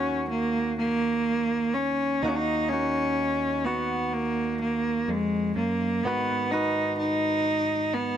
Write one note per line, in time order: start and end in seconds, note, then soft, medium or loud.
0.00 2.22 D#2 soft
0.00 2.22 D#3 soft
0.00 2.17 A#3 soft
0.00 0.27 C#4 medium
0.00 2.17 C#4 soft
0.00 2.25 F#4 soft
0.29 0.74 A#3 medium
0.78 1.75 A#3 medium
1.74 2.24 C#4 medium
2.22 5.08 D#2 soft
2.22 6.04 D#3 soft
2.22 2.71 A#3 soft
2.22 2.30 D#4 medium
2.22 2.72 D#4 soft
2.22 2.73 F#4 soft
2.28 2.37 C#4 medium
2.36 2.70 D#4 medium
2.69 3.66 C#4 medium
2.69 6.06 D#4 soft
2.74 3.66 F#4 soft
3.65 4.15 B3 medium
3.65 5.98 F#4 soft
4.13 4.60 A#3 medium
4.61 5.11 A#3 medium
5.08 5.56 F2 soft
5.08 5.56 G#3 medium
5.56 6.03 F#2 soft
5.56 6.05 A#3 medium
6.04 8.17 G#2 soft
6.04 8.17 D#3 soft
6.04 6.53 B3 medium
6.04 6.52 B3 soft
6.04 6.52 F#4 soft
6.04 6.53 B4 medium
6.51 6.98 D#4 medium
6.51 8.17 F#4 soft
6.51 7.47 B4 soft
6.99 7.95 D#4 medium
7.94 8.17 B3 medium